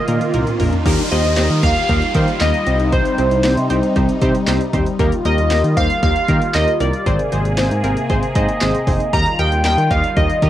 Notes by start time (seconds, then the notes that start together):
Already playing: D#3 A#3 F4 D#5, riser
0.08 A#2 A#3 D#4 F4 A#4, closed hi-hat, mid tom
0.21 closed hi-hat, mid tom
0.34 C2 A#3 D#4 F4 A#4, closed hi-hat, mid tom
0.47 closed hi-hat, mid tom
0.60 A#1 A#3 D#4 F4 A#4, floor tom, open hi-hat
0.73 closed hi-hat, floor tom
0.85 D#2 D#3 G3 A#3 D#4 F4 G4 A#4, kick, closed hi-hat, crash, downlifter
0.98 closed hi-hat
1.11 D#2 A#3 D#4 G4 C5 D#5, closed hi-hat
1.24 D#2, closed hi-hat
1.37 D#2 A#3 D#4 G4 C5, snare, closed hi-hat
1.50 D#3, closed hi-hat
1.63 D#2 A#3 D#4 G4 A#4 F5, kick, closed hi-hat
1.76 closed hi-hat
1.89 D#2 A#3 D#4 G4 A#4, kick, closed hi-hat
2.02 closed hi-hat
2.15 D#3 A#3 D#4 G4 C5, kick, closed hi-hat
2.28 closed hi-hat
2.41 D#2 A#3 D#4 G4 A#4 D#5, snare, clap, closed hi-hat
2.54 closed hi-hat
2.67 C2 C3 C4 D#4 G4 C5, closed hi-hat
2.80 closed hi-hat
2.92 C5, kick, closed hi-hat
3.05 closed hi-hat
3.18 C2 C4 D#4 G4 C5, closed hi-hat
3.31 C2, closed hi-hat
3.44 C2 C4 D#4 G4 C5, snare, closed hi-hat
3.57 C3, closed hi-hat
3.70 C2 C4 D#4 G4 C5, closed hi-hat
3.83 closed hi-hat
3.96 C2 C4 D#4 G4 C5, kick, closed hi-hat
4.09 closed hi-hat
4.21 C3 C4 D#4 G4 C5, kick, closed hi-hat
4.35 closed hi-hat
4.47 C2 C4 D#4 G4 C5, snare, clap, closed hi-hat
4.61 closed hi-hat
4.73 D#2 C4 D#4 G4 C5, kick, closed hi-hat
4.86 closed hi-hat
4.99 D#2 D#3 A#3 D#4 F4 G4 A#4, kick, closed hi-hat
5.12 closed hi-hat
5.25 D#2 A#3 D#4 G4 A#4 D#5, closed hi-hat
5.38 D#2, closed hi-hat
5.51 D#2 A#3 D#4 G4 A#4, snare, closed hi-hat
5.64 D#3, closed hi-hat
5.77 D#2 A#3 D#4 G4 C5 F5, kick, closed hi-hat
5.90 closed hi-hat
6.03 D#2 A#3 D#4 G4 A#4 F5, kick, closed hi-hat
6.16 closed hi-hat
6.28 D#3 A#3 D#4 G4 A#4, kick, closed hi-hat
6.42 closed hi-hat
6.54 D#2 A#3 D#4 G4 A#4 D#5, snare, clap, closed hi-hat
6.68 closed hi-hat
6.80 C2 A#3 D#4 G4 A#4 D5, closed hi-hat
6.93 closed hi-hat
7.06 G#1 C3 A#3 C4 D#4 G#4 C5, kick, closed hi-hat
7.19 closed hi-hat
7.32 G#1 C4 D#4 G#4 C5, closed hi-hat
7.45 G#1, closed hi-hat
7.58 G#1 C4 D#4 G#4 C5, snare, closed hi-hat
7.71 G#2, closed hi-hat
7.84 G#1 C4 D#4 G#4 A#4, closed hi-hat
7.97 closed hi-hat
8.10 G#1 C4 D#4 G#4 C5, kick, closed hi-hat
8.23 closed hi-hat
8.35 G#2 C4 D#4 G#4 C5 D#5, kick, closed hi-hat
8.49 closed hi-hat
8.61 G#1 C4 D#4 G#4 C5, snare, clap, closed hi-hat
8.75 closed hi-hat
8.87 F1 C4 D#4 G#4 C5, kick, open hi-hat
9.00 closed hi-hat
9.13 D#2 D#3 G3 D#4 F4 G4 A#4 D#5 A#5, kick, closed hi-hat
9.26 closed hi-hat
9.39 D#2 D#4 G4 A#4 D#5 G5, closed hi-hat
9.52 D#2, closed hi-hat
9.65 D#2 D#4 G4 A#4 D#5 G5, snare, closed hi-hat
9.78 D#3, closed hi-hat
9.91 D#2 D#4 G4 A#4 D#5 F5, kick, closed hi-hat
10.04 closed hi-hat
10.17 D#2 D#4 G4 A#4 D#5, kick, closed hi-hat
10.30 closed hi-hat
10.42 D#3 D#4 G4 A#4 D#5, kick, closed hi-hat